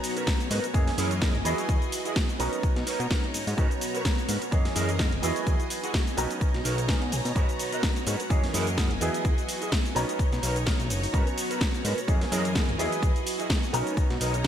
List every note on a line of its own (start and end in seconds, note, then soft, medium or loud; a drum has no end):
0.00 0.70 F#3 medium
0.00 0.70 B3 medium
0.00 0.73 B3 medium
0.00 0.70 C#4 medium
0.00 0.70 D#4 medium
0.00 0.73 F#4 medium
0.00 0.72 C#5 medium
0.00 0.71 A#5 medium
0.00 0.72 A#5 medium
0.00 muted clean electric guitar stroke soft
0.00 open hi-hat loud
0.04 cabasa medium
0.15 0.33 F#4 medium
0.15 0.33 A#4 medium
0.15 0.34 B4 medium
0.15 0.34 C#5 loud
0.15 closed hi-hat medium
0.15 cabasa soft
0.27 kick loud
0.27 snare loud
0.27 closed hi-hat medium
0.27 cabasa soft
0.40 closed hi-hat soft
0.40 cabasa soft
0.50 0.60 G#2 loud
0.50 0.63 F#4 medium
0.50 0.64 A#4 medium
0.50 0.64 B4 medium
0.50 0.64 D#5 loud
0.50 open hi-hat loud
0.50 cabasa medium
0.64 closed hi-hat soft
0.64 cabasa soft
0.73 0.91 F#2 medium
0.73 1.41 E3 medium
0.73 1.44 E3 medium
0.73 1.41 A#3 medium
0.73 1.41 C#4 medium
0.73 1.41 G#4 medium
0.73 1.45 A#4 medium
0.73 2.38 D#5 medium
0.73 1.41 D#5 medium
0.73 2.38 G#5 medium
0.73 muted clean electric guitar stroke soft
0.73 kick loud
0.73 closed hi-hat medium
0.73 cabasa soft
0.88 snare soft
0.88 open hi-hat medium
0.97 1.36 F#2 loud
0.97 1.11 E4 loud
0.97 1.11 G#4 loud
0.97 1.11 A#4 loud
0.97 1.12 C#5 loud
0.97 open hi-hat loud
0.97 cabasa medium
1.11 closed hi-hat soft
1.11 cabasa soft
1.21 1.34 E4 medium
1.21 1.35 G#4 medium
1.21 1.35 A#4 medium
1.21 1.35 D#5 medium
1.21 kick loud
1.21 snare loud
1.21 closed hi-hat medium
1.21 cabasa soft
1.35 1.42 F#1 medium
1.35 closed hi-hat soft
1.44 1.54 E2 medium
1.44 2.35 F#3 medium
1.44 2.35 B3 medium
1.44 1.84 E4 medium
1.44 2.36 E4 medium
1.44 2.39 F#4 medium
1.44 1.84 F#4 medium
1.44 1.84 G#4 medium
1.44 2.36 G#4 medium
1.44 2.36 D#5 medium
1.44 1.85 D#5 loud
1.44 open hi-hat loud
1.44 cabasa medium
1.58 closed hi-hat soft
1.58 cabasa soft
1.69 1.78 E2 loud
1.69 kick loud
1.69 closed hi-hat medium
1.69 cabasa soft
1.82 closed hi-hat soft
1.82 cabasa soft
1.92 muted clean electric guitar stroke soft
1.92 open hi-hat loud
1.92 cabasa medium
2.05 2.22 E4 medium
2.05 2.23 F#4 medium
2.05 2.23 G#4 medium
2.05 2.23 D#5 loud
2.05 closed hi-hat medium
2.05 cabasa soft
2.16 kick loud
2.16 snare loud
2.16 closed hi-hat medium
2.16 cabasa soft
2.29 closed hi-hat soft
2.29 cabasa soft
2.39 2.49 B1 loud
2.39 3.53 F#3 medium
2.39 3.53 B3 medium
2.39 3.54 C#4 medium
2.39 2.78 D#4 medium
2.39 3.57 D#4 medium
2.39 3.54 D#4 medium
2.39 2.78 A#4 medium
2.39 2.79 B4 medium
2.39 4.50 C#5 medium
2.39 2.79 C#5 loud
2.39 3.57 A#5 medium
2.39 3.54 A#5 loud
2.39 open hi-hat loud
2.39 cabasa medium
2.53 closed hi-hat soft
2.53 cabasa soft
2.63 kick loud
2.63 closed hi-hat medium
2.63 cabasa soft
2.76 2.84 B2 medium
2.76 snare soft
2.76 closed hi-hat soft
2.86 3.00 D#4 loud
2.86 3.00 A#4 loud
2.86 3.00 B4 loud
2.86 3.00 C#5 loud
2.86 open hi-hat loud
2.86 cabasa medium
3.00 3.07 B2 loud
3.00 closed hi-hat soft
3.00 cabasa soft
3.10 3.23 D#4 medium
3.10 3.23 A#4 medium
3.10 3.24 B4 medium
3.10 3.24 D#5 medium
3.10 kick loud
3.10 snare loud
3.10 closed hi-hat medium
3.10 cabasa soft
3.24 closed hi-hat soft
3.33 3.45 G#2 soft
3.33 muted clean electric guitar stroke soft
3.33 open hi-hat loud
3.33 cabasa medium
3.46 3.54 G#2 loud
3.46 muted clean electric guitar stroke soft
3.46 open hi-hat medium
3.46 cabasa soft
3.57 3.67 G#2 loud
3.57 4.48 F#3 medium
3.57 4.48 B3 medium
3.57 4.51 B3 medium
3.57 4.48 C#4 medium
3.57 4.48 D#4 medium
3.57 3.70 F#4 loud
3.57 4.51 F#4 medium
3.57 3.71 A#4 loud
3.57 3.71 B4 loud
3.57 3.71 C#5 loud
3.57 4.51 A#5 medium
3.57 4.48 A#5 medium
3.57 kick loud
3.57 closed hi-hat medium
3.57 cabasa soft
3.71 closed hi-hat soft
3.71 cabasa soft
3.80 muted clean electric guitar stroke soft
3.80 open hi-hat loud
3.80 cabasa medium
3.94 4.11 F#4 medium
3.94 4.11 A#4 medium
3.94 4.12 B4 medium
3.94 4.12 C#5 medium
3.94 closed hi-hat medium
3.94 cabasa soft
4.05 kick loud
4.05 snare loud
4.05 closed hi-hat medium
4.05 cabasa soft
4.18 closed hi-hat soft
4.18 cabasa soft
4.28 4.38 G#2 loud
4.28 4.41 F#4 medium
4.28 4.41 A#4 medium
4.28 4.42 B4 medium
4.28 4.42 C#5 loud
4.28 open hi-hat loud
4.28 cabasa medium
4.42 closed hi-hat medium
4.42 cabasa soft
4.51 4.69 F#2 medium
4.51 5.18 E3 medium
4.51 5.22 E3 medium
4.51 5.19 A#3 medium
4.51 5.19 C#4 medium
4.51 5.19 G#4 medium
4.51 5.22 A#4 medium
4.51 6.16 D#5 medium
4.51 5.19 D#5 medium
4.51 6.16 G#5 medium
4.51 muted clean electric guitar stroke soft
4.51 kick loud
4.51 closed hi-hat medium
4.51 cabasa soft
4.65 snare soft
4.65 open hi-hat medium
4.75 5.14 F#2 loud
4.75 4.88 E4 loud
4.75 4.89 G#4 loud
4.75 4.89 A#4 loud
4.75 4.89 D#5 loud
4.75 open hi-hat loud
4.75 cabasa medium
4.89 closed hi-hat medium
4.89 cabasa soft
4.98 5.12 E4 medium
4.98 5.12 G#4 medium
4.98 5.13 A#4 medium
4.98 5.13 D#5 loud
4.98 kick loud
4.98 snare loud
4.98 closed hi-hat medium
4.98 cabasa soft
5.12 5.20 F#1 medium
5.12 closed hi-hat soft
5.22 5.32 E2 medium
5.22 6.13 F#3 medium
5.22 6.13 B3 medium
5.22 5.61 E4 medium
5.22 6.14 E4 medium
5.22 5.62 F#4 medium
5.22 6.17 F#4 medium
5.22 5.62 G#4 medium
5.22 6.14 G#4 medium
5.22 6.13 D#5 medium
5.22 5.62 D#5 loud
5.22 open hi-hat loud
5.22 cabasa medium
5.36 closed hi-hat soft
5.36 cabasa soft
5.47 5.56 E2 loud
5.47 kick loud
5.47 closed hi-hat medium
5.47 cabasa soft
5.60 closed hi-hat soft
5.60 cabasa soft
5.69 muted clean electric guitar stroke soft
5.69 open hi-hat loud
5.69 cabasa medium
5.82 6.00 E4 medium
5.82 6.00 F#4 medium
5.82 6.01 G#4 medium
5.82 6.01 F#5 loud
5.82 closed hi-hat medium
5.82 cabasa soft
5.94 kick loud
5.94 snare loud
5.94 closed hi-hat medium
5.94 cabasa soft
6.07 closed hi-hat soft
6.07 cabasa soft
6.17 6.27 B1 loud
6.17 7.31 F#3 medium
6.17 7.31 B3 medium
6.17 7.31 C#4 medium
6.17 6.56 D#4 loud
6.17 7.34 D#4 medium
6.17 7.32 D#4 medium
6.17 6.56 A#4 medium
6.17 6.57 B4 medium
6.17 8.28 C#5 medium
6.17 6.57 C#5 loud
6.17 8.28 A#5 medium
6.17 7.32 A#5 loud
6.17 open hi-hat loud
6.17 cabasa medium
6.31 closed hi-hat medium
6.31 cabasa soft
6.41 6.63 D#5 medium
6.41 kick loud
6.41 closed hi-hat medium
6.41 cabasa soft
6.54 6.62 B2 medium
6.54 snare soft
6.54 closed hi-hat soft
6.64 6.95 B1 medium
6.64 6.77 D#4 loud
6.64 6.78 A#4 loud
6.64 6.78 B4 loud
6.64 6.78 C#5 loud
6.64 6.87 F#5 medium
6.64 open hi-hat loud
6.64 cabasa medium
6.78 closed hi-hat medium
6.78 cabasa soft
6.88 7.01 D#4 medium
6.88 7.01 A#4 medium
6.88 7.02 B4 medium
6.88 7.02 D#5 loud
6.88 7.10 G#5 medium
6.88 kick loud
6.88 snare loud
6.88 closed hi-hat medium
6.88 cabasa soft
7.02 7.14 B2 medium
7.02 closed hi-hat soft
7.11 7.21 B1 medium
7.11 7.34 G#5 medium
7.11 muted clean electric guitar stroke soft
7.11 open hi-hat loud
7.11 cabasa medium
7.24 7.32 B2 loud
7.24 muted clean electric guitar stroke soft
7.24 open hi-hat medium
7.24 cabasa soft
7.35 7.45 G#2 loud
7.35 8.26 F#3 medium
7.35 8.26 B3 medium
7.35 8.29 B3 medium
7.35 8.26 C#4 medium
7.35 8.26 D#4 medium
7.35 7.48 F#4 loud
7.35 8.29 F#4 medium
7.35 7.49 A#4 loud
7.35 7.49 B4 loud
7.35 7.49 C#5 loud
7.35 8.26 A#5 medium
7.35 kick loud
7.35 closed hi-hat medium
7.35 cabasa soft
7.49 closed hi-hat soft
7.49 cabasa soft
7.59 muted clean electric guitar stroke soft
7.59 open hi-hat loud
7.59 cabasa medium
7.72 7.89 F#4 medium
7.72 7.89 A#4 medium
7.72 7.90 B4 medium
7.72 7.90 D#5 loud
7.72 closed hi-hat medium
7.72 cabasa soft
7.83 kick loud
7.83 snare loud
7.83 closed hi-hat medium
7.83 cabasa soft
7.96 closed hi-hat soft
7.96 cabasa soft
8.06 8.16 G#2 loud
8.06 8.19 F#4 medium
8.06 8.20 A#4 medium
8.06 8.20 B4 medium
8.06 8.20 C#5 loud
8.06 open hi-hat loud
8.06 cabasa medium
8.20 closed hi-hat medium
8.20 cabasa soft
8.30 8.47 F#2 medium
8.30 8.97 E3 medium
8.30 9.00 E3 medium
8.30 8.97 A#3 medium
8.30 8.97 C#4 medium
8.30 8.97 G#4 medium
8.30 9.00 A#4 medium
8.30 9.94 D#5 medium
8.30 8.97 D#5 medium
8.30 9.94 G#5 medium
8.30 muted clean electric guitar stroke soft
8.30 kick loud
8.30 closed hi-hat medium
8.30 cabasa soft
8.44 snare soft
8.44 open hi-hat medium
8.53 8.92 F#2 loud
8.53 8.67 E4 loud
8.53 8.67 G#4 loud
8.53 8.67 A#4 loud
8.53 8.68 F#5 loud
8.53 open hi-hat loud
8.53 cabasa medium
8.67 closed hi-hat medium
8.67 cabasa soft
8.77 8.90 E4 medium
8.77 8.90 G#4 medium
8.77 8.91 A#4 medium
8.77 8.91 F#5 loud
8.77 kick loud
8.77 snare loud
8.77 closed hi-hat medium
8.77 cabasa soft
8.91 8.98 F#1 medium
8.91 closed hi-hat soft
9.00 9.10 E2 medium
9.00 9.91 F#3 medium
9.00 9.91 B3 medium
9.00 9.39 E4 loud
9.00 9.92 E4 medium
9.00 9.40 F#4 medium
9.00 9.95 F#4 medium
9.00 9.40 G#4 medium
9.00 9.92 G#4 medium
9.00 9.91 D#5 medium
9.00 9.40 D#5 loud
9.00 open hi-hat loud
9.00 cabasa medium
9.14 closed hi-hat medium
9.14 cabasa soft
9.25 9.34 E2 loud
9.25 kick loud
9.25 closed hi-hat medium
9.25 cabasa soft
9.38 closed hi-hat soft
9.38 cabasa soft
9.48 muted clean electric guitar stroke soft
9.48 open hi-hat loud
9.48 cabasa medium
9.61 9.78 E4 medium
9.61 9.78 F#4 medium
9.61 9.79 G#4 medium
9.61 9.79 D#5 medium
9.61 closed hi-hat medium
9.61 cabasa soft
9.72 kick loud
9.72 snare loud
9.72 closed hi-hat medium
9.72 cabasa soft
9.85 closed hi-hat soft
9.85 cabasa soft
9.95 10.05 B1 loud
9.95 11.09 F#3 medium
9.95 11.09 B3 medium
9.95 11.09 C#4 medium
9.95 10.34 D#4 medium
9.95 11.13 D#4 medium
9.95 11.10 D#4 medium
9.95 10.34 A#4 medium
9.95 10.35 B4 medium
9.95 12.06 C#5 medium
9.95 10.35 C#5 loud
9.95 12.06 A#5 medium
9.95 11.10 A#5 loud
9.95 open hi-hat loud
9.95 cabasa medium
10.09 closed hi-hat medium
10.09 cabasa soft
10.19 kick loud
10.19 closed hi-hat medium
10.19 cabasa soft
10.32 10.40 B2 medium
10.32 snare soft
10.32 closed hi-hat soft
10.32 cabasa soft
10.42 10.73 B1 medium
10.42 10.55 D#4 loud
10.42 10.56 A#4 loud
10.42 10.56 B4 loud
10.42 10.56 C#5 loud
10.42 open hi-hat loud
10.42 cabasa medium
10.56 closed hi-hat medium
10.56 cabasa soft
10.65 10.79 D#4 medium
10.65 10.79 A#4 medium
10.65 10.80 B4 medium
10.65 10.80 D#5 loud
10.65 kick loud
10.65 snare loud
10.65 closed hi-hat medium
10.65 cabasa soft
10.80 10.92 B1 medium
10.80 closed hi-hat soft
10.80 cabasa soft
10.89 11.07 F#1 medium
10.89 muted clean electric guitar stroke soft
10.89 open hi-hat loud
10.89 cabasa medium
11.02 muted clean electric guitar stroke soft
11.02 open hi-hat medium
11.02 cabasa soft
11.13 11.23 G#2 loud
11.13 12.04 F#3 medium
11.13 12.04 B3 medium
11.13 12.07 B3 medium
11.13 12.04 C#4 medium
11.13 12.04 D#4 medium
11.13 11.26 F#4 loud
11.13 12.07 F#4 medium
11.13 11.27 A#4 loud
11.13 11.27 B4 loud
11.13 11.27 C#5 loud
11.13 12.04 A#5 medium
11.13 kick loud
11.13 closed hi-hat medium
11.13 cabasa soft
11.27 closed hi-hat soft
11.27 cabasa soft
11.36 muted clean electric guitar stroke soft
11.36 open hi-hat loud
11.36 cabasa medium
11.49 11.67 F#4 medium
11.49 11.67 A#4 medium
11.49 11.68 B4 medium
11.49 11.68 C#5 medium
11.49 closed hi-hat medium
11.49 cabasa soft
11.61 kick loud
11.61 snare loud
11.61 closed hi-hat medium
11.61 cabasa soft
11.74 closed hi-hat soft
11.74 cabasa soft
11.83 11.94 G#2 loud
11.83 11.97 F#4 medium
11.83 11.97 A#4 medium
11.83 11.98 B4 medium
11.83 11.98 C#5 loud
11.83 open hi-hat loud
11.83 cabasa medium
11.98 closed hi-hat medium
11.98 cabasa soft
12.07 12.25 F#2 medium
12.07 12.74 E3 medium
12.07 12.78 E3 medium
12.07 12.75 A#3 medium
12.07 12.75 C#4 medium
12.07 12.75 G#4 medium
12.07 12.78 A#4 medium
12.07 13.72 D#5 medium
12.07 12.75 D#5 medium
12.07 13.72 G#5 medium
12.07 muted clean electric guitar stroke soft
12.07 kick loud
12.07 closed hi-hat medium
12.07 cabasa soft
12.21 snare soft
12.21 open hi-hat medium
12.31 12.70 F#2 medium
12.31 12.44 E4 loud
12.31 12.45 G#4 loud
12.31 12.45 A#4 loud
12.31 12.45 D#5 loud
12.31 open hi-hat loud
12.31 cabasa medium
12.45 closed hi-hat medium
12.45 cabasa soft
12.54 12.68 E4 medium
12.54 12.68 G#4 medium
12.54 12.69 A#4 medium
12.54 12.69 F#5 medium
12.54 kick loud
12.54 snare loud
12.54 closed hi-hat medium
12.54 cabasa soft
12.68 12.76 F#1 medium
12.68 closed hi-hat soft
12.78 12.88 E2 medium
12.78 13.69 F#3 medium
12.78 13.69 B3 medium
12.78 13.17 E4 medium
12.78 13.69 E4 medium
12.78 13.18 F#4 medium
12.78 13.73 F#4 medium
12.78 13.18 G#4 medium
12.78 13.70 G#4 medium
12.78 13.69 D#5 medium
12.78 13.18 D#5 loud
12.78 open hi-hat loud
12.78 cabasa medium
12.92 closed hi-hat medium
12.92 cabasa soft
13.03 13.12 E2 loud
13.03 kick loud
13.03 closed hi-hat medium
13.03 cabasa soft
13.16 closed hi-hat soft
13.16 cabasa soft
13.25 muted clean electric guitar stroke soft
13.25 open hi-hat loud
13.25 cabasa medium
13.38 13.56 E4 medium
13.38 13.56 F#4 medium
13.38 13.57 G#4 medium
13.38 13.57 D#5 loud
13.38 closed hi-hat medium
13.38 cabasa soft
13.50 kick loud
13.50 snare loud
13.50 closed hi-hat medium
13.50 cabasa soft
13.63 closed hi-hat soft
13.63 cabasa soft
13.73 13.83 B1 loud
13.73 14.47 F#3 medium
13.73 14.47 B3 medium
13.73 14.47 C#4 medium
13.73 14.12 D#4 loud
13.73 14.47 D#4 medium
13.73 14.12 A#4 medium
13.73 14.13 B4 medium
13.73 14.47 C#5 medium
13.73 14.13 C#5 loud
13.73 14.47 A#5 medium
13.73 14.47 A#5 loud
13.73 open hi-hat loud
13.73 cabasa medium
13.87 closed hi-hat medium
13.87 cabasa soft
13.97 kick loud
13.97 closed hi-hat medium
13.97 cabasa soft
14.10 14.18 B2 medium
14.10 snare soft
14.10 closed hi-hat soft
14.20 14.47 B1 medium
14.20 14.33 D#4 loud
14.20 14.34 A#4 loud
14.20 14.34 B4 loud
14.20 14.34 D#5 loud
14.20 open hi-hat loud
14.20 cabasa medium
14.34 closed hi-hat medium
14.34 cabasa soft
14.44 14.47 D#4 medium
14.44 14.47 A#4 medium